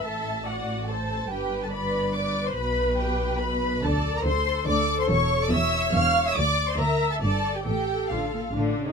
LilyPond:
<<
  \new Staff \with { instrumentName = "Violin section" } { \time 3/4 \key g \major \tempo 4 = 142 a''4 fis''4 a''4 | g''8. a''16 b''4 d'''8. c'''16 | b''4 g''4 b''4 | \key d \minor a''8. bes''16 c'''4 d'''8. c'''16 |
cis'''8. d'''16 e'''4 f'''8. e'''16 | d'''8. c'''16 bes''8. a''16 a''8. g''16 | g''4 f''4 r4 | }
  \new Staff \with { instrumentName = "Viola section" } { \time 3/4 \key g \major e''4 d''4 c''4 | b'4 d''4 b'4~ | b'2. | \key d \minor d''4 a'2~ |
a'4 cis''4 cis''4 | d''4 e''4 d''4 | a'2 d'8. ees'16 | }
  \new Staff \with { instrumentName = "Violin section" } { \time 3/4 \key g \major a'4 fis'4 a'4 | g'8. a'16 b'4 d''8. c''16 | b'4 g'4 b'4 | \key d \minor a'8. bes'16 c''4 d''8. c''16 |
cis''8. d''16 e''4 f''8. e''16 | d''8. c''16 bes'8. a'16 a'8. g'16 | g'4 f'4 r4 | }
  \new Staff \with { instrumentName = "Cello section" } { \clef bass \time 3/4 \key g \major << { a,2. | g,2. | b,2. | \key d \minor d4 d4 d4 |
e,4 e,4 e,4 | d,4 d,4 g,4 | a,4 r4 d8. ees16 | } \\ { r2. | r2. | r2. | r2. |
r2. | r2. | r4 d8 bes,8 a,8 cis8 | } >> }
  \new Staff \with { instrumentName = "Double bass section" } { \clef bass \time 3/4 \key g \major a,,2. | g,,2. | b,,2. | \key d \minor d,4 d,4 d,4 |
e,,4 e,,4 e,,4 | d,4 d,4 g,,4 | a,,4 a,,4 a,,4 | }
>>